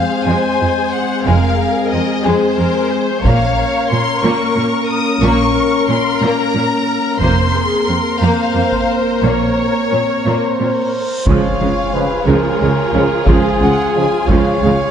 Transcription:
Already playing: french horn section G#3 C4, violin section G#4 F5, viola section C5
0.25 cello section F2, violin section G#3 G#5
0.60 cello section F2, violin section G#3
0.92 violin section F#5
1.25 double bass section F1, cello section F2, violin section G#3 F5, viola section A#4
1.90 cello section F2, violin section C4 D#5
2.23 cello section F2, violin section G#3 C5, viola section G#4
2.57 cello section F2, violin section G#3, viola section A#4
2.90 viola section C5
3.23 double bass section A#1, cello section A#2, violin section A#3 A#4 F5, french horn section A#3 C#4, viola section C#5, taiko
3.90 cello section A#2, violin section C#4 C6
4.22 cello section A#2, violin section A#3 C#6, viola section A#4
4.56 cello section A#2, violin section A#3
4.89 violin section D#6
5.20 double bass section A#1, cello section A#2, violin section A#3 C#6, viola section A#4
5.88 cello section A#2, violin section C#4 C6
6.22 cello section A#2, violin section A#3 A#5
6.55 cello section A#2, violin section A#3
7.20 double bass section F1, cello section F2, french horn section A#3 C4, violin section A#3 A#4 C6, viola section C5, taiko
7.54 viola section G#4
7.87 cello section F2, violin section C4, viola section A#4
8.19 cello section F2, violin section A#3 F5, viola section C5
8.54 cello section F2, violin section A#3
8.72 taiko
8.90 violin section C5
9.23 double bass section A#1, cello section A#2, violin section A#3 C#5, viola section C#5, reverse cymbal
9.91 cello section A#2, violin section C#4
10.25 cello section A#2, violin section A#3, trumpet C5
10.60 cello section A#2, violin section C4
11.26 tuba C#2, double bass section C#2, cello section C#3, viola section F3 G#3, violin section F4 G#4 F5, trumpet C#5, taiko, impact
11.60 double bass section C#2, tuba C#2, cello section C#3, viola section G#3
11.93 trombone section C#3 F3, french horn section G#3 C#4, trumpet B4
12.25 double bass section C#2, tuba C#2, cello section C#3, viola section F3 G#3, trumpet A#4, violin section C#5
12.61 double bass section C#2, tuba C#2, cello section C#3, viola section G#3
12.93 double bass section C#2, tuba C#2, trombone section C#3 F3, cello section C#3, french horn section G#3 C#4, viola section G#3 C#4
13.26 double bass section C#2, tuba C#2, cello section C#3, viola section F3 G#3, trumpet G#4, violin section F5, taiko
13.60 double bass section C#2, tuba C#2, cello section C#3, viola section G#3, violin section F#5
13.93 trombone section C#3 F3, french horn section G#3 C#4, violin section G#5
14.27 double bass section C#2, tuba C#2, cello section C#3, viola section F3 G#3, trumpet C#5, violin section F5, taiko
14.63 double bass section C#2, tuba C#2, cello section C#3, viola section G#3

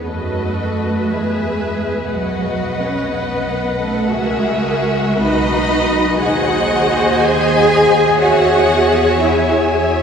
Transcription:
0.06 double bass section F#2, cello section A3, viola section F#4 B4, violin section A4 D#5
1.09 double bass section E2, cello section G#3, viola section G#4, violin section G#4 E5
2.11 double bass section B1, cello section F#3, violin section F#4 D#5 F#5, viola section B4
2.79 cello section C#4, violin section C#5
3.12 cello section B3, violin section B4
3.78 cello section A3, violin section A4
4.11 double bass section C#2, cello section G#3, viola section F#4 A#4, violin section G#4 E5
5.18 double bass section B1, cello section D#4, viola section B4, violin section D#5 B5
6.19 double bass section D#2, cello section F#4, viola section G#4 C5, violin section F#5 G#5
7.19 cello section G#4, violin section G#5
8.18 double bass section E2, cello section F#4, viola section C#5, violin section E5 F#5
9.19 cello section E4, violin section E5

